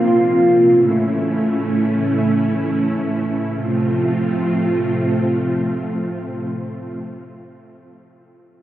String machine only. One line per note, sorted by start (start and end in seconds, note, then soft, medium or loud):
0.00 0.72 A#3 medium
0.00 0.72 C4 medium
0.00 0.71 F4 medium
0.75 3.51 A3 medium
0.75 3.51 C#4 medium
0.75 3.51 E4 medium
3.54 6.95 A3 medium
3.54 6.95 C4 medium
3.54 6.95 F4 medium